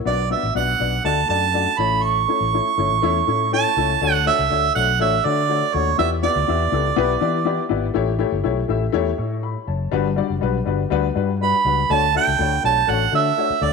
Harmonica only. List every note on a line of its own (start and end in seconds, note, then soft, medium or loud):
0.07 0.29 D5 medium
0.31 0.54 E5 medium
0.56 1.02 F#5 medium
1.05 1.28 A5 loud
1.29 1.80 A5 loud
1.79 2.04 B5 loud
2.03 3.51 C#6 loud
3.53 4.05 A5 loud
4.03 4.27 F#5 medium
4.27 4.72 E5 loud
4.75 4.98 F#5 medium
5.01 5.27 E5 medium
5.25 5.75 D5 medium
5.74 5.98 C#5 medium
5.99 6.10 E5 medium
6.23 7.67 D5 medium
11.43 11.94 B5 loud
11.92 12.15 A5 loud
12.17 12.61 G5 loud
12.65 12.92 A5 loud
12.90 13.14 F#5 loud
13.15 13.66 E5 loud
13.64 13.73 D5 medium